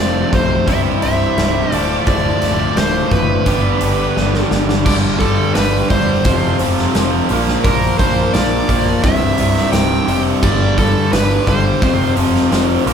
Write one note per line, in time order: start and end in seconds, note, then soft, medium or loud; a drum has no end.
0.00 0.23 F1 medium
0.00 0.65 F2 medium
0.00 0.65 C3 medium
0.00 0.66 F3 medium
0.00 0.66 A3 loud
0.00 0.66 C4 medium
0.00 0.67 F4 medium
0.00 0.66 A4 medium
0.00 0.67 C5 medium
0.00 0.36 D5 medium
0.33 0.57 B1 medium
0.33 0.66 C5 medium
0.33 kick medium
0.33 open hi-hat medium
0.66 0.92 C1 medium
0.66 1.70 C2 medium
0.66 1.70 G2 loud
0.66 1.71 C3 loud
0.66 1.71 G3 medium
0.66 1.72 E4 medium
0.66 1.71 E4 loud
0.66 1.72 G4 medium
0.66 1.72 C5 medium
0.66 0.78 E5 loud
0.66 kick medium
0.66 open hi-hat medium
1.02 1.28 C1 medium
1.02 1.73 E5 loud
1.02 open hi-hat medium
1.38 1.62 C1 medium
1.38 snare medium
1.38 open hi-hat medium
1.71 1.97 D1 medium
1.71 3.44 D2 medium
1.71 3.44 A2 medium
1.71 3.44 D3 medium
1.71 3.45 F3 loud
1.71 3.45 A3 medium
1.71 3.45 D4 medium
1.71 3.45 F4 medium
1.71 3.45 A4 medium
1.71 2.03 D5 loud
1.71 open hi-hat medium
2.07 2.32 D1 medium
2.07 2.79 D5 medium
2.07 kick medium
2.07 open hi-hat medium
2.42 2.66 D1 medium
2.42 snare soft
2.42 open hi-hat medium
2.76 3.01 D1 loud
2.76 3.12 C5 medium
2.76 snare loud
2.76 open hi-hat medium
3.11 3.36 F#1 medium
3.11 4.48 B4 medium
3.11 kick medium
3.11 open hi-hat medium
3.45 3.71 G1 medium
3.45 4.83 G2 medium
3.45 4.84 D3 loud
3.45 4.84 G3 loud
3.45 4.84 B3 medium
3.45 4.84 D4 medium
3.45 4.84 G4 medium
3.45 4.85 G4 loud
3.45 4.84 B4 medium
3.45 kick medium
3.45 open hi-hat medium
3.81 4.06 G1 medium
3.81 open hi-hat medium
4.17 4.41 G1 medium
4.17 snare medium
4.34 snare medium
4.51 4.85 G1 loud
4.51 snare medium
4.69 snare medium
4.85 5.36 G1 medium
4.85 5.19 G2 medium
4.85 5.20 D3 loud
4.85 5.21 G3 loud
4.85 6.24 D4 medium
4.85 6.25 G4 medium
4.85 4.95 D5 medium
4.85 6.24 B5 medium
4.85 kick loud
4.85 crash loud
4.85 tambourine medium
5.19 5.54 G2 medium
5.19 5.54 D3 medium
5.19 5.55 G3 medium
5.19 5.54 A4 medium
5.19 kick medium
5.19 open hi-hat soft
5.19 tambourine medium
5.55 5.81 G1 medium
5.55 5.89 G2 medium
5.55 5.90 D3 medium
5.55 5.90 G3 medium
5.55 5.89 B4 medium
5.55 snare loud
5.55 open hi-hat medium
5.55 tambourine medium
5.90 6.25 E1 medium
5.90 6.23 G2 medium
5.90 6.23 D3 medium
5.90 6.24 G3 loud
5.90 6.56 C5 medium
5.90 kick medium
5.90 open hi-hat medium
5.90 tambourine soft
6.25 6.50 F1 medium
6.25 6.59 F2 loud
6.25 6.60 C3 loud
6.25 6.60 F3 medium
6.25 7.29 C4 medium
6.25 7.29 F4 medium
6.25 7.29 A4 medium
6.25 kick loud
6.25 open hi-hat medium
6.25 tambourine soft
6.59 6.85 F1 medium
6.59 6.94 F2 medium
6.59 6.95 C3 medium
6.59 6.95 F3 loud
6.59 open hi-hat medium
6.59 tambourine medium
6.78 snare soft
6.95 7.20 F1 medium
6.95 7.28 F2 medium
6.95 7.28 C3 medium
6.95 7.29 F3 medium
6.95 snare medium
6.95 open hi-hat medium
6.95 tambourine medium
7.29 7.55 A#1 medium
7.29 7.64 A#2 medium
7.29 7.65 F3 medium
7.29 7.66 A#3 medium
7.29 9.03 D4 medium
7.29 9.03 F4 medium
7.29 9.03 A#4 medium
7.29 open hi-hat medium
7.29 tambourine medium
7.48 snare soft
7.64 7.90 A#1 medium
7.64 7.98 A#2 medium
7.64 7.99 F3 loud
7.64 8.00 A#3 loud
7.64 7.98 A#4 medium
7.64 kick loud
7.64 open hi-hat medium
7.64 tambourine medium
7.98 8.24 A#1 medium
7.98 8.33 A#2 medium
7.98 8.33 F3 medium
7.98 8.34 A#3 medium
7.98 8.31 C5 medium
7.98 kick medium
7.98 open hi-hat medium
7.98 tambourine medium
8.33 8.60 A#1 loud
8.33 8.68 A#2 medium
8.33 8.69 F3 medium
8.33 8.69 A#3 medium
8.33 9.03 D5 medium
8.33 snare loud
8.33 open hi-hat medium
8.33 tambourine medium
8.69 8.94 A#1 medium
8.69 9.02 A#2 medium
8.69 9.02 F3 loud
8.69 9.02 A#3 medium
8.69 kick medium
8.69 open hi-hat medium
8.69 tambourine soft
9.04 9.29 C1 medium
9.04 9.37 C2 loud
9.04 9.38 G2 loud
9.04 9.38 C3 loud
9.04 10.43 E4 medium
9.04 10.42 G4 medium
9.04 10.42 C5 medium
9.04 9.70 E5 medium
9.04 kick loud
9.04 open hi-hat medium
9.04 tambourine soft
9.38 9.63 C1 medium
9.38 9.72 C2 medium
9.38 9.72 G2 loud
9.38 9.73 C3 loud
9.38 open hi-hat medium
9.38 tambourine medium
9.56 snare soft
9.72 9.98 C1 medium
9.72 10.07 C2 loud
9.72 10.07 G2 loud
9.72 10.08 C3 medium
9.72 10.22 G5 loud
9.72 snare loud
9.72 open hi-hat medium
9.72 tambourine loud
10.08 10.33 F1 loud
10.08 10.41 C2 medium
10.08 10.41 G2 medium
10.08 10.42 C3 medium
10.08 open hi-hat medium
10.08 tambourine medium
10.43 10.93 G1 loud
10.43 10.77 G2 loud
10.43 10.77 D3 loud
10.43 10.78 G3 loud
10.43 11.81 D4 medium
10.43 11.82 G4 medium
10.43 10.76 D5 loud
10.43 kick loud
10.43 tambourine medium
10.43 crash medium
10.78 11.11 G2 medium
10.78 11.12 D3 medium
10.78 11.12 G3 medium
10.78 11.12 A4 medium
10.78 kick medium
10.78 open hi-hat medium
10.78 tambourine medium
11.12 11.38 G1 loud
11.12 11.46 G2 medium
11.12 11.47 D3 loud
11.12 11.48 G3 loud
11.12 11.48 B4 medium
11.12 snare loud
11.12 open hi-hat medium
11.12 tambourine medium
11.47 11.72 G1 medium
11.47 11.80 G2 medium
11.47 11.81 D3 loud
11.47 11.81 G3 loud
11.47 12.14 C5 medium
11.47 kick medium
11.47 open hi-hat medium
11.47 tambourine soft
11.82 12.07 F1 medium
11.82 12.15 F2 loud
11.82 12.16 C3 loud
11.82 12.16 F3 loud
11.82 12.86 C4 medium
11.82 12.84 F4 medium
11.82 12.86 A4 medium
11.82 kick loud
11.82 open hi-hat medium
11.82 tambourine soft
12.17 12.42 F1 medium
12.17 12.50 F2 medium
12.17 12.51 C3 loud
12.17 12.51 F3 medium
12.17 open hi-hat medium
12.17 tambourine medium
12.35 snare soft
12.51 12.77 F1 medium
12.51 12.84 F2 medium
12.51 12.85 C3 medium
12.51 12.85 F3 medium
12.51 snare medium
12.51 open hi-hat medium
12.51 tambourine medium
12.85 12.93 A#1 loud
12.85 12.93 A#2 medium
12.85 12.93 F3 medium
12.85 12.93 A#3 loud
12.85 12.93 D4 medium
12.85 12.93 F4 medium
12.85 12.93 A#4 medium
12.85 open hi-hat medium
12.85 tambourine medium